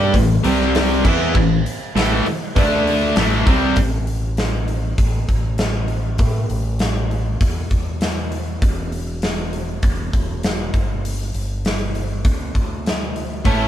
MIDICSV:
0, 0, Header, 1, 7, 480
1, 0, Start_track
1, 0, Tempo, 604839
1, 1076, Time_signature, 4, 2, 24, 8
1, 10856, End_track
2, 0, Start_track
2, 0, Title_t, "Distorted electric guitar"
2, 0, Program_c, 0, 30
2, 0, Note_on_c, 0, 55, 100
2, 0, Note_on_c, 0, 62, 110
2, 0, Note_on_c, 0, 67, 103
2, 103, Note_off_c, 0, 55, 0
2, 105, Note_off_c, 0, 62, 0
2, 105, Note_on_c, 0, 45, 73
2, 107, Note_off_c, 0, 67, 0
2, 107, Note_on_c, 0, 52, 73
2, 303, Note_off_c, 0, 45, 0
2, 303, Note_off_c, 0, 52, 0
2, 344, Note_on_c, 0, 48, 94
2, 344, Note_on_c, 0, 55, 91
2, 351, Note_on_c, 0, 60, 100
2, 822, Note_off_c, 0, 48, 0
2, 823, Note_off_c, 0, 55, 0
2, 826, Note_off_c, 0, 60, 0
2, 838, Note_on_c, 0, 52, 87
2, 842, Note_on_c, 0, 59, 101
2, 848, Note_on_c, 0, 64, 101
2, 1065, Note_off_c, 0, 52, 0
2, 1071, Note_off_c, 0, 59, 0
2, 1072, Note_on_c, 0, 45, 68
2, 1074, Note_on_c, 0, 52, 62
2, 1075, Note_off_c, 0, 64, 0
2, 1266, Note_off_c, 0, 45, 0
2, 1267, Note_off_c, 0, 52, 0
2, 1554, Note_on_c, 0, 45, 94
2, 1558, Note_on_c, 0, 52, 95
2, 1560, Note_on_c, 0, 57, 94
2, 1788, Note_off_c, 0, 45, 0
2, 1790, Note_off_c, 0, 52, 0
2, 1791, Note_off_c, 0, 57, 0
2, 2038, Note_on_c, 0, 50, 90
2, 2043, Note_on_c, 0, 57, 92
2, 2047, Note_on_c, 0, 62, 106
2, 2510, Note_off_c, 0, 50, 0
2, 2513, Note_off_c, 0, 57, 0
2, 2515, Note_off_c, 0, 62, 0
2, 2515, Note_on_c, 0, 45, 87
2, 2523, Note_on_c, 0, 52, 90
2, 2527, Note_on_c, 0, 57, 94
2, 2743, Note_off_c, 0, 45, 0
2, 2746, Note_on_c, 0, 48, 83
2, 2749, Note_off_c, 0, 52, 0
2, 2753, Note_off_c, 0, 57, 0
2, 2753, Note_on_c, 0, 55, 95
2, 2756, Note_on_c, 0, 60, 101
2, 2984, Note_off_c, 0, 48, 0
2, 2988, Note_off_c, 0, 55, 0
2, 2989, Note_off_c, 0, 60, 0
2, 10671, Note_on_c, 0, 45, 74
2, 10674, Note_on_c, 0, 52, 78
2, 10683, Note_on_c, 0, 57, 80
2, 10689, Note_on_c, 0, 61, 83
2, 10691, Note_on_c, 0, 64, 90
2, 10856, Note_off_c, 0, 45, 0
2, 10856, Note_off_c, 0, 52, 0
2, 10856, Note_off_c, 0, 57, 0
2, 10856, Note_off_c, 0, 61, 0
2, 10856, Note_off_c, 0, 64, 0
2, 10856, End_track
3, 0, Start_track
3, 0, Title_t, "Fingered electric bass"
3, 0, Program_c, 1, 33
3, 0, Note_on_c, 1, 43, 94
3, 97, Note_off_c, 1, 43, 0
3, 110, Note_on_c, 1, 33, 73
3, 336, Note_off_c, 1, 33, 0
3, 350, Note_on_c, 1, 36, 82
3, 801, Note_off_c, 1, 36, 0
3, 832, Note_on_c, 1, 40, 98
3, 1057, Note_off_c, 1, 40, 0
3, 1073, Note_on_c, 1, 33, 77
3, 1298, Note_off_c, 1, 33, 0
3, 1550, Note_on_c, 1, 33, 89
3, 1776, Note_off_c, 1, 33, 0
3, 2030, Note_on_c, 1, 38, 91
3, 2482, Note_off_c, 1, 38, 0
3, 2506, Note_on_c, 1, 33, 85
3, 2734, Note_off_c, 1, 33, 0
3, 2750, Note_on_c, 1, 36, 88
3, 2977, Note_off_c, 1, 36, 0
3, 2991, Note_on_c, 1, 33, 90
3, 3924, Note_off_c, 1, 33, 0
3, 3952, Note_on_c, 1, 33, 81
3, 4176, Note_off_c, 1, 33, 0
3, 4193, Note_on_c, 1, 33, 72
3, 4915, Note_off_c, 1, 33, 0
3, 4915, Note_on_c, 1, 45, 83
3, 5138, Note_off_c, 1, 45, 0
3, 5162, Note_on_c, 1, 33, 85
3, 5850, Note_off_c, 1, 33, 0
3, 5877, Note_on_c, 1, 40, 80
3, 6100, Note_off_c, 1, 40, 0
3, 6113, Note_on_c, 1, 40, 65
3, 6806, Note_off_c, 1, 40, 0
3, 6838, Note_on_c, 1, 28, 91
3, 7768, Note_off_c, 1, 28, 0
3, 7802, Note_on_c, 1, 28, 83
3, 8023, Note_off_c, 1, 28, 0
3, 8043, Note_on_c, 1, 28, 81
3, 8491, Note_off_c, 1, 28, 0
3, 8524, Note_on_c, 1, 31, 78
3, 8971, Note_off_c, 1, 31, 0
3, 9003, Note_on_c, 1, 31, 82
3, 9691, Note_off_c, 1, 31, 0
3, 9719, Note_on_c, 1, 38, 85
3, 9941, Note_off_c, 1, 38, 0
3, 9963, Note_on_c, 1, 38, 66
3, 10650, Note_off_c, 1, 38, 0
3, 10677, Note_on_c, 1, 33, 80
3, 10856, Note_off_c, 1, 33, 0
3, 10856, End_track
4, 0, Start_track
4, 0, Title_t, "Muted distorted electric guitar strokes"
4, 1800, Note_on_c, 9, 29, 64
4, 1880, Note_off_c, 9, 29, 0
4, 10856, End_track
5, 0, Start_track
5, 0, Title_t, "Muted fingered electric bass strokes"
5, 1786, Note_on_c, 9, 29, 42
5, 1865, Note_off_c, 9, 29, 0
5, 10856, End_track
6, 0, Start_track
6, 0, Title_t, "Muted overdriven electric guitar strokes"
6, 1795, Note_on_c, 9, 29, 51
6, 1875, Note_off_c, 9, 29, 0
6, 10856, End_track
7, 0, Start_track
7, 0, Title_t, "Drums"
7, 96, Note_on_c, 9, 56, 89
7, 111, Note_on_c, 9, 36, 85
7, 113, Note_on_c, 9, 46, 78
7, 176, Note_off_c, 9, 56, 0
7, 190, Note_off_c, 9, 36, 0
7, 193, Note_off_c, 9, 46, 0
7, 343, Note_on_c, 9, 56, 65
7, 352, Note_on_c, 9, 46, 58
7, 422, Note_off_c, 9, 56, 0
7, 432, Note_off_c, 9, 46, 0
7, 486, Note_on_c, 9, 38, 33
7, 565, Note_off_c, 9, 38, 0
7, 588, Note_on_c, 9, 56, 66
7, 594, Note_on_c, 9, 46, 79
7, 602, Note_on_c, 9, 38, 106
7, 667, Note_off_c, 9, 56, 0
7, 674, Note_off_c, 9, 46, 0
7, 682, Note_off_c, 9, 38, 0
7, 832, Note_on_c, 9, 36, 96
7, 834, Note_on_c, 9, 49, 92
7, 911, Note_off_c, 9, 36, 0
7, 913, Note_off_c, 9, 49, 0
7, 1064, Note_on_c, 9, 56, 84
7, 1071, Note_on_c, 9, 36, 93
7, 1143, Note_off_c, 9, 56, 0
7, 1151, Note_off_c, 9, 36, 0
7, 1319, Note_on_c, 9, 46, 58
7, 1398, Note_off_c, 9, 46, 0
7, 1548, Note_on_c, 9, 56, 72
7, 1560, Note_on_c, 9, 46, 74
7, 1568, Note_on_c, 9, 38, 107
7, 1628, Note_off_c, 9, 56, 0
7, 1640, Note_off_c, 9, 46, 0
7, 1648, Note_off_c, 9, 38, 0
7, 1796, Note_on_c, 9, 46, 56
7, 1875, Note_off_c, 9, 46, 0
7, 2025, Note_on_c, 9, 56, 90
7, 2034, Note_on_c, 9, 36, 101
7, 2036, Note_on_c, 9, 46, 73
7, 2105, Note_off_c, 9, 56, 0
7, 2114, Note_off_c, 9, 36, 0
7, 2115, Note_off_c, 9, 46, 0
7, 2280, Note_on_c, 9, 46, 57
7, 2359, Note_off_c, 9, 46, 0
7, 2507, Note_on_c, 9, 56, 62
7, 2508, Note_on_c, 9, 46, 70
7, 2515, Note_on_c, 9, 38, 109
7, 2586, Note_off_c, 9, 56, 0
7, 2587, Note_off_c, 9, 46, 0
7, 2595, Note_off_c, 9, 38, 0
7, 2752, Note_on_c, 9, 36, 102
7, 2755, Note_on_c, 9, 46, 51
7, 2832, Note_off_c, 9, 36, 0
7, 2834, Note_off_c, 9, 46, 0
7, 2984, Note_on_c, 9, 46, 65
7, 2990, Note_on_c, 9, 36, 97
7, 3063, Note_off_c, 9, 46, 0
7, 3069, Note_off_c, 9, 36, 0
7, 3231, Note_on_c, 9, 46, 47
7, 3311, Note_off_c, 9, 46, 0
7, 3470, Note_on_c, 9, 46, 54
7, 3478, Note_on_c, 9, 38, 87
7, 3549, Note_off_c, 9, 46, 0
7, 3557, Note_off_c, 9, 38, 0
7, 3712, Note_on_c, 9, 46, 45
7, 3791, Note_off_c, 9, 46, 0
7, 3953, Note_on_c, 9, 36, 98
7, 3953, Note_on_c, 9, 46, 63
7, 4032, Note_off_c, 9, 36, 0
7, 4032, Note_off_c, 9, 46, 0
7, 4195, Note_on_c, 9, 36, 70
7, 4196, Note_on_c, 9, 46, 45
7, 4274, Note_off_c, 9, 36, 0
7, 4275, Note_off_c, 9, 46, 0
7, 4428, Note_on_c, 9, 46, 61
7, 4436, Note_on_c, 9, 38, 99
7, 4507, Note_off_c, 9, 46, 0
7, 4515, Note_off_c, 9, 38, 0
7, 4667, Note_on_c, 9, 46, 46
7, 4746, Note_off_c, 9, 46, 0
7, 4907, Note_on_c, 9, 46, 65
7, 4913, Note_on_c, 9, 36, 103
7, 4986, Note_off_c, 9, 46, 0
7, 4992, Note_off_c, 9, 36, 0
7, 5156, Note_on_c, 9, 46, 49
7, 5235, Note_off_c, 9, 46, 0
7, 5391, Note_on_c, 9, 46, 54
7, 5399, Note_on_c, 9, 38, 89
7, 5470, Note_off_c, 9, 46, 0
7, 5478, Note_off_c, 9, 38, 0
7, 5644, Note_on_c, 9, 46, 39
7, 5723, Note_off_c, 9, 46, 0
7, 5879, Note_on_c, 9, 36, 92
7, 5879, Note_on_c, 9, 46, 64
7, 5958, Note_off_c, 9, 36, 0
7, 5958, Note_off_c, 9, 46, 0
7, 6117, Note_on_c, 9, 46, 44
7, 6118, Note_on_c, 9, 36, 76
7, 6196, Note_off_c, 9, 46, 0
7, 6198, Note_off_c, 9, 36, 0
7, 6355, Note_on_c, 9, 46, 55
7, 6363, Note_on_c, 9, 38, 99
7, 6435, Note_off_c, 9, 46, 0
7, 6443, Note_off_c, 9, 38, 0
7, 6601, Note_on_c, 9, 46, 44
7, 6680, Note_off_c, 9, 46, 0
7, 6841, Note_on_c, 9, 36, 108
7, 6842, Note_on_c, 9, 46, 60
7, 6921, Note_off_c, 9, 36, 0
7, 6921, Note_off_c, 9, 46, 0
7, 7081, Note_on_c, 9, 46, 44
7, 7161, Note_off_c, 9, 46, 0
7, 7318, Note_on_c, 9, 46, 61
7, 7326, Note_on_c, 9, 38, 86
7, 7397, Note_off_c, 9, 46, 0
7, 7405, Note_off_c, 9, 38, 0
7, 7563, Note_on_c, 9, 46, 45
7, 7642, Note_off_c, 9, 46, 0
7, 7798, Note_on_c, 9, 46, 61
7, 7800, Note_on_c, 9, 36, 101
7, 7878, Note_off_c, 9, 46, 0
7, 7880, Note_off_c, 9, 36, 0
7, 8042, Note_on_c, 9, 46, 42
7, 8043, Note_on_c, 9, 36, 79
7, 8121, Note_off_c, 9, 46, 0
7, 8122, Note_off_c, 9, 36, 0
7, 8281, Note_on_c, 9, 46, 64
7, 8289, Note_on_c, 9, 38, 101
7, 8360, Note_off_c, 9, 46, 0
7, 8368, Note_off_c, 9, 38, 0
7, 8522, Note_on_c, 9, 36, 85
7, 8523, Note_on_c, 9, 46, 43
7, 8601, Note_off_c, 9, 36, 0
7, 8602, Note_off_c, 9, 46, 0
7, 8770, Note_on_c, 9, 46, 67
7, 8849, Note_off_c, 9, 46, 0
7, 9003, Note_on_c, 9, 46, 47
7, 9082, Note_off_c, 9, 46, 0
7, 9244, Note_on_c, 9, 46, 58
7, 9252, Note_on_c, 9, 38, 91
7, 9324, Note_off_c, 9, 46, 0
7, 9332, Note_off_c, 9, 38, 0
7, 9483, Note_on_c, 9, 46, 44
7, 9562, Note_off_c, 9, 46, 0
7, 9719, Note_on_c, 9, 46, 58
7, 9720, Note_on_c, 9, 36, 98
7, 9798, Note_off_c, 9, 46, 0
7, 9799, Note_off_c, 9, 36, 0
7, 9960, Note_on_c, 9, 36, 77
7, 9963, Note_on_c, 9, 46, 39
7, 10039, Note_off_c, 9, 36, 0
7, 10042, Note_off_c, 9, 46, 0
7, 10208, Note_on_c, 9, 46, 59
7, 10216, Note_on_c, 9, 38, 98
7, 10288, Note_off_c, 9, 46, 0
7, 10296, Note_off_c, 9, 38, 0
7, 10443, Note_on_c, 9, 46, 41
7, 10522, Note_off_c, 9, 46, 0
7, 10675, Note_on_c, 9, 36, 101
7, 10677, Note_on_c, 9, 46, 55
7, 10755, Note_off_c, 9, 36, 0
7, 10756, Note_off_c, 9, 46, 0
7, 10856, End_track
0, 0, End_of_file